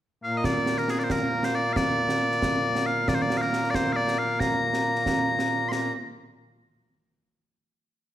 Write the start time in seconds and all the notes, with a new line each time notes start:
0.24 A#2 A#3 F5
0.37 D#5
0.44 D5, concert bass drum, snare
0.66 snare
0.77 A#4, snare
0.88 G#4, snare
0.99 D5, snare
1.04 C5
1.10 A#4, concert bass drum, snare
1.43 C5, snare
1.55 D5
1.73 D5 F5, concert bass drum, snare
2.09 snare
2.31 snare
2.42 concert bass drum, snare
2.75 snare
2.86 F5
3.08 D5, concert bass drum, snare
3.15 C5
3.22 D5
3.30 snare
3.37 F5
3.41 A#4, snare
3.53 snare
3.64 snare
3.70 D5, concert bass drum, snare
3.75 C5
3.93 D5 F5
4.07 snare
4.18 F5
4.40 A#5, concert bass drum, snare
4.73 snare
4.95 snare
5.06 concert bass drum, snare
5.39 snare
5.69 A#5 C6, snare